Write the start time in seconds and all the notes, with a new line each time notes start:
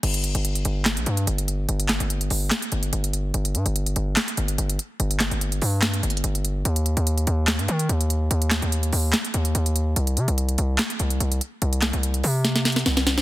0.03 G1, closed hi-hat, crash
0.14 closed hi-hat
0.24 closed hi-hat
0.35 G1, closed hi-hat
0.45 closed hi-hat
0.55 closed hi-hat
0.65 G1, closed hi-hat
0.85 snare, clap, closed hi-hat
0.97 A#1, closed hi-hat
1.06 G2, closed hi-hat
1.17 closed hi-hat
1.27 G1, closed hi-hat
1.38 closed hi-hat
1.48 closed hi-hat
1.69 G1, closed hi-hat
1.80 closed hi-hat
1.88 snare, clap, closed hi-hat
2.00 G1, closed hi-hat
2.10 closed hi-hat
2.21 closed hi-hat
2.30 G1, open hi-hat
2.51 snare, clap, closed hi-hat
2.62 closed hi-hat
2.72 G1, closed hi-hat
2.83 closed hi-hat
2.93 G1, closed hi-hat
3.04 closed hi-hat
3.13 closed hi-hat
3.34 G1, closed hi-hat
3.45 closed hi-hat
3.55 G2, closed hi-hat
3.66 G1, closed hi-hat
3.76 closed hi-hat
3.86 closed hi-hat
3.96 G1, closed hi-hat
4.16 snare, clap, closed hi-hat
4.28 closed hi-hat
4.37 G1, closed hi-hat
4.48 closed hi-hat
4.58 G1, closed hi-hat
4.70 closed hi-hat
4.79 closed hi-hat
5.00 G1, closed hi-hat
5.11 closed hi-hat
5.20 snare, clap, closed hi-hat
5.31 G1, closed hi-hat
5.41 closed hi-hat
5.52 closed hi-hat
5.62 G2, open hi-hat
5.82 snare, clap, closed hi-hat
5.94 closed hi-hat
6.03 G1, closed hi-hat
6.10 closed hi-hat
6.17 closed hi-hat
6.24 G1, closed hi-hat
6.35 closed hi-hat
6.45 closed hi-hat
6.65 D#2, closed hi-hat
6.76 closed hi-hat
6.86 closed hi-hat
6.97 D#2, closed hi-hat
7.07 closed hi-hat
7.18 closed hi-hat
7.27 D#2, closed hi-hat
7.47 snare, clap, closed hi-hat
7.59 G2, closed hi-hat
7.68 D#3, closed hi-hat
7.79 closed hi-hat
7.89 D#2, closed hi-hat
8.01 closed hi-hat
8.10 closed hi-hat
8.31 D#2, closed hi-hat
8.42 closed hi-hat
8.51 snare, clap, closed hi-hat
8.62 D#2, closed hi-hat
8.72 closed hi-hat
8.83 closed hi-hat
8.93 D#2, open hi-hat
9.13 snare, clap, closed hi-hat
9.25 closed hi-hat
9.34 D#2, closed hi-hat
9.45 closed hi-hat
9.55 D#2, closed hi-hat
9.66 closed hi-hat
9.76 closed hi-hat
9.96 C2, closed hi-hat
10.07 closed hi-hat
10.17 C3, closed hi-hat
10.28 C2, closed hi-hat
10.38 closed hi-hat
10.49 closed hi-hat
10.58 C2, closed hi-hat
10.78 snare, clap, closed hi-hat
10.90 closed hi-hat
10.99 C2, closed hi-hat
11.10 closed hi-hat
11.20 C2, closed hi-hat
11.32 closed hi-hat
11.41 closed hi-hat
11.62 C2, closed hi-hat
11.73 closed hi-hat
11.82 snare, clap, closed hi-hat
11.93 C2, closed hi-hat
12.03 closed hi-hat
12.14 closed hi-hat
12.24 C3, open hi-hat
12.45 snare, closed hi-hat
12.56 snare, closed hi-hat
12.65 snare, closed hi-hat
12.72 closed hi-hat
12.76 snare, closed hi-hat
12.86 C2, snare, closed hi-hat
12.97 snare, closed hi-hat
13.07 snare, closed hi-hat
13.18 snare